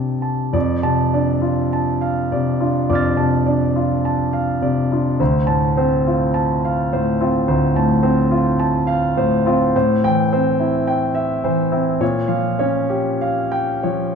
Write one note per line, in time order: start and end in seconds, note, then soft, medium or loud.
0.00 0.57 C3 soft
0.00 0.57 D4 soft
0.00 0.57 G4 soft
0.00 0.53 D5 soft
0.00 0.57 G5 soft
0.00 0.22 A5 soft
0.22 0.54 A5 soft
0.53 2.86 F2 medium
0.53 1.02 D5 medium
0.83 1.31 C3 soft
0.83 1.32 A5 medium
1.14 1.62 D4 soft
1.14 1.62 D5 soft
1.42 1.90 F4 soft
1.73 2.21 A5 medium
2.01 2.49 F5 medium
2.32 2.79 C3 soft
2.32 2.79 D5 medium
2.60 3.07 D4 soft
2.60 3.07 F4 soft
2.89 5.15 F2 medium
2.89 3.36 D5 medium
2.89 5.15 D6 soft
2.89 5.17 F6 soft
2.95 5.18 A6 soft
3.17 3.64 C3 soft
3.17 3.64 A5 soft
3.46 3.93 D4 soft
3.46 3.93 D5 soft
3.76 4.22 F4 soft
4.05 4.51 A5 soft
4.33 4.79 F5 medium
4.61 5.08 C3 soft
4.61 5.08 D5 medium
4.92 5.20 D4 soft
4.92 5.20 F4 soft
5.20 7.46 D2 medium
5.20 5.66 C5 medium
5.47 5.94 A2 soft
5.47 5.94 A5 medium
5.77 6.24 C4 medium
5.77 6.24 C5 medium
6.07 6.53 F4 medium
6.34 6.81 A5 medium
6.65 7.11 F5 medium
6.93 7.39 A2 soft
6.93 7.39 C5 medium
7.21 7.66 C4 medium
7.21 7.66 F4 medium
7.48 9.69 D2 medium
7.48 7.93 C5 medium
7.76 8.21 A2 medium
7.76 8.21 A5 medium
8.03 8.48 C4 medium
8.03 8.48 C5 medium
8.31 8.76 F4 medium
8.59 9.05 A5 medium
8.87 9.33 F5 medium
9.17 9.62 A2 medium
9.17 9.63 C5 medium
9.46 9.74 C4 medium
9.46 9.74 F4 medium
9.76 11.98 A2 medium
9.76 10.21 C5 medium
10.04 10.49 E3 medium
10.04 10.49 G5 medium
10.32 10.77 C4 medium
10.32 10.77 C5 medium
10.59 11.04 E4 medium
10.87 11.32 G5 medium
11.15 11.60 E5 medium
11.44 11.90 E3 medium
11.44 11.90 C5 medium
11.71 12.01 C4 medium
11.71 12.01 E4 medium
12.00 14.15 A#2 medium
12.00 12.48 C#5 medium
12.28 12.77 F3 medium
12.28 12.77 F5 medium
12.59 13.09 C#4 medium
12.59 13.09 C#5 medium
12.90 13.40 G4 medium
13.21 13.73 F5 medium
13.52 14.04 G5 medium
13.83 14.15 F3 soft
13.83 14.15 C#5 medium